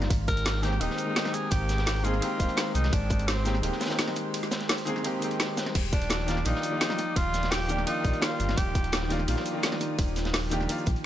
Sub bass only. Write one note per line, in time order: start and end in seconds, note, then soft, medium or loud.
0.10 0.79 G#1 loud
0.81 0.89 D#1 medium
1.52 2.21 G#1 loud
2.40 2.48 D#1 medium
2.75 2.91 C2 loud
2.93 3.62 G#1 loud
3.63 3.71 D#1 loud
5.75 6.44 D#1 loud
6.46 6.54 A#1 medium
7.16 7.85 D#1 loud
8.05 8.13 A#1 medium
8.40 8.56 G1 loud
8.57 9.27 D#1 loud
9.28 9.36 A#1 medium
9.99 10.68 D#1 loud
10.87 10.95 A#1 medium